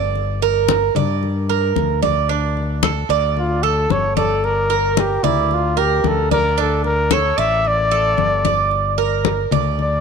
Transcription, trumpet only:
3.39 F4
3.63 A4
3.91 C#5
4.17 A4
4.45 A#4
4.99 G4
5.24 E4
5.54 F4
5.79 G4
6.07 A4
6.32 A#4
6.61 A4
6.85 A#4
7.13 C#5
7.39 E5
7.68 D5
9.81 D5

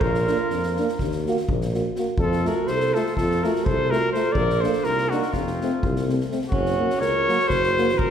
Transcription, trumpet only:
0.01 A#4
2.20 A4
2.47 A#4
2.67 C5
2.94 A4
3.17 A4
3.44 A#4
3.65 C5
3.91 A#4
4.12 C5
4.32 D5
4.61 C5
4.85 A#4
5.11 F#4
5.33 F4
6.49 F#4
7.00 C#5
7.48 C5
7.98 A#4

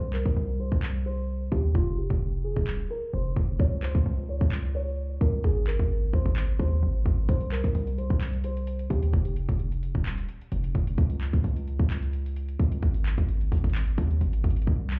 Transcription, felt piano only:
Already playing: C5
0.13 A#4
0.60 C5
1.06 C5
1.52 G4
1.75 F4
1.98 G4
2.44 G#4
2.90 A#4
3.13 C5
3.60 C#5
3.83 C5
4.29 C#5
4.75 C#5
5.21 A#4
5.44 G#4
5.67 A#4
6.13 C5
6.59 C5
7.29 C5
7.52 A#4
7.98 C5
8.44 C5
8.90 G4

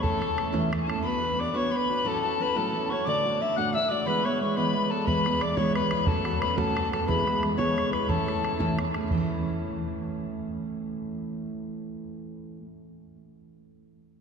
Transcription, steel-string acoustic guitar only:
0.02 A2 E3 A3 C#4 E4
0.20 A3 C#4 E4
0.36 E3 A3 C#4 E4
0.52 A2 E3 A3 C#4 E4
0.71 E3 A3 C#4 E4
0.87 A3 C#4 E4
1.03 B3 D4 F#4 B4
1.21 D4 F#4 B4
1.37 B3 D4 F#4 B4
1.54 B3 D4 F#4 B4
1.71 B3 D4 F#4 B4
1.89 D4 F#4 B4
2.04 A2 F#3 C#4 E4 F#4
2.23 C#4 E4 F#4
2.40 F#3 C#4 E4 F#4
2.55 A2 F#3 C#4 E4 F#4
2.74 F#3 C#4 E4 F#4
2.90 C#4 E4 F#4
3.07 D2 A2 D3 A3 D4 F#4
3.25 D3 A3 D4 F#4
3.41 D3 A3 D4 F#4
3.58 D2 A2 D3 A3 D4 F#4
3.75 D3 D4 F#4
3.91 D3 A3 D4 F#4
4.06 E3 G#3 B3 E4
4.24 G#3 B3 E4
4.41 E3 G#3 B3 E4
4.57 E3 G#3 B3 E4
4.74 E3 G#3 B3 E4
4.90 G#3 B3 E4
5.07 E3 G#3 B3 E4
5.25 G#3 B3 E4
5.41 E3 G#3 B3 E4
5.58 E3 G#3 B3 E4
5.76 E3 G#3 B3 E4
5.92 G#3 B3 E4
6.07 F#3 A3 C#4 F#4
6.24 A3 C#4 F#4
6.41 F#3 A3 C#4 F#4
6.58 F#3 A3 C#4 F#4
6.75 F#3 A3 C#4 F#4
6.92 A3 C#4 F#4
7.08 E3 G#3 B3 E4
7.26 G#3 B3 E4
7.42 E3 G#3 B3 E4
7.57 E3 G#3 B3 E4
7.76 E3 G#3 B3 E4
7.91 G#3 B3 E4
8.08 A2 E3 A3 C#4 E4
8.26 A3 C#4 E4
8.42 E3 A3 C#4 E4
8.59 A2 E3 A3 C#4 E4
8.78 E3 A3 C#4 E4
8.94 A3 C#4 E4
9.08 A2 E3
9.14 A3 C#4
9.20 E4

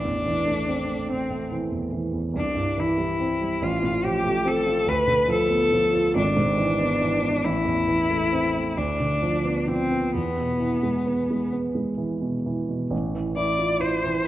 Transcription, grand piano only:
Already playing: A1
0.05 E2
0.26 E3
0.47 A3
0.68 C4
0.90 A3
1.09 C4
1.30 A3
1.51 E3
1.71 E2
1.93 E3
2.12 E2
2.34 C2
2.55 G2
2.77 E3
2.98 G3
3.20 C4
3.41 G3
3.62 A1
3.83 A2
4.04 F3
4.24 A3
4.45 C4
4.66 F4
4.86 D2
5.07 D3
5.28 F3
5.49 B3
5.72 F3
5.93 F4
6.15 G#1
6.37 G#2
6.58 E3
6.80 B3
7.01 E3
7.22 B3
7.44 A1
7.65 E2
7.88 E3
8.10 A3
8.32 C4
8.55 A3
8.77 D2
9.00 D3
9.22 F3
9.45 B3
9.68 F3
9.91 B3
10.14 E2
10.37 B2
10.60 E3
10.83 G#3
11.06 B3
11.31 G#3
11.53 B3
11.75 G#3
11.98 E3
12.22 B2
12.46 E3
12.68 B2
12.90 A1
13.14 E3
13.37 E4
13.59 F4
13.80 E4
14.04 E3

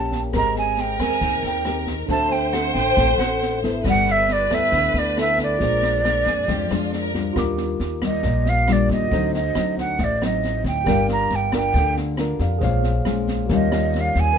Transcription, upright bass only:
Already playing: A#1
0.33 G#1
0.99 D#2
1.21 D#2
1.43 D#2
2.09 D2
2.75 A1
2.97 A1
3.17 A1
3.85 G1
4.51 D2
4.72 D2
4.94 D2
5.60 A#1
6.26 F2
6.48 F2
6.71 F2
7.36 D#2
7.80 D#2
8.23 A#1
8.89 D#2
9.11 D2
9.56 D2
9.99 A1
10.64 D2
10.87 G1
11.30 G1
11.74 D2
12.39 F2
12.61 A#1
13.06 A#1
13.50 D#2
14.15 D#2

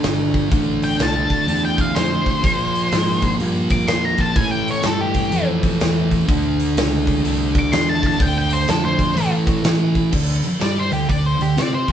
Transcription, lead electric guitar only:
0.84 G5
1.02 A5
1.65 G5
1.81 F5
1.95 C5
3.72 D6
3.88 C6
4.05 A#5
4.21 A5
4.36 G#5
4.51 G5
4.71 C#5
4.86 A4
5.01 G4
7.59 D6
7.73 C6
7.89 A5
8.07 A5
8.22 G5
8.38 G5
8.53 C5
8.70 A4
8.85 C5
10.62 D5
10.80 C5
10.93 G4
11.09 D5
11.26 C5
11.42 G4
11.58 D5
11.74 C5

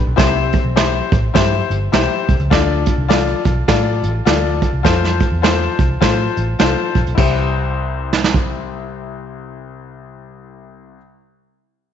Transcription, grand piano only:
0.16 C4 E4 G4 C5
0.76 E4 G4 C5
1.34 E4 G4 C5
1.92 E4 G4 C5
2.50 D3 F4 A4 D5
3.08 F4 A4 D5
3.68 F4 A4 D5
4.25 F4 A4 D5
4.83 F4 A4 C5
5.42 F4 A4 C5
6.00 F4 A4 C5
6.59 F4 A4 C5
7.15 C2 E4 G4
7.20 C5

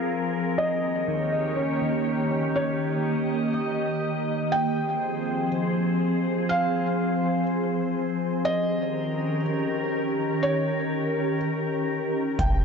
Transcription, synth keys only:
Already playing: F5
0.58 D#5
1.08 D#3
1.32 D#5
1.57 C#4
1.82 D#3
2.31 C#4
3.54 D#5

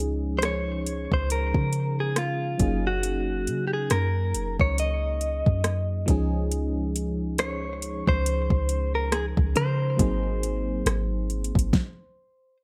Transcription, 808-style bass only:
Already playing: C#2
1.12 C#2
1.55 C#3
2.60 F#1
3.47 C#3
3.91 F#2
4.34 F1
4.60 C#2
5.47 F#2
6.08 C#2
8.08 C#2
8.50 C#2
9.37 C#2
9.56 C#3
9.99 G#1
10.86 G#1
11.55 G#1

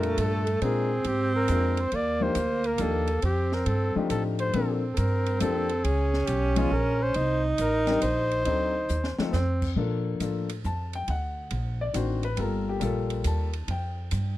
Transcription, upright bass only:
Already playing: F2
0.18 G2
0.62 A#2
1.05 G#2
1.49 F2
1.92 D#2
2.35 D2
2.80 D#2
3.23 F2
3.66 G2
3.96 muted upright bass stroke
4.10 A2
4.54 A#2
4.98 G2
5.41 F2
5.84 C#2
6.28 B1
6.71 A#1
7.16 C2
7.59 A1
8.02 A#1
8.46 D2
8.90 D#2
9.19 muted upright bass stroke
9.33 F2
9.76 A#2
10.20 A2
10.65 F2
11.08 D2
11.51 A#1
11.94 A1
12.38 G1
12.81 A#1
13.25 D#2
13.68 F2
14.12 G2

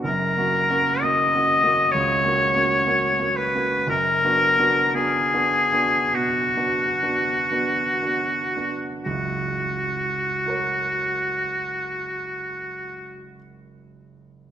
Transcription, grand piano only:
0.04 F#1 F#2
0.37 A#3 C#4 F#4
0.70 A#3 C#4 F#4
1.02 A#3 C#4 F#4
1.34 A#3 C#4 F#4
1.63 A#3 C#4 F#4
1.94 C#2
2.24 A#3 C#4 F#4
2.55 A#3 C#4 F#4
2.87 A#3 C#4 F#4
3.19 A#3 C#4 F#4
3.55 A#3 C#4 F#4
3.87 F#1 F#2
4.24 B3 D4 F#4
4.59 B3 D4 F#4
4.95 B3 D4 F#4
5.34 B3 D4 F#4
5.73 B3 D4 F#4
6.13 B2
6.57 B3 D4 F#4
7.03 B3 D4 F#4
7.51 B3 D4 F#4
8.02 B3 D4 F#4
8.56 B3 D4 F#4
9.06 F#1 C#2
10.46 F#4 A#4 C#5

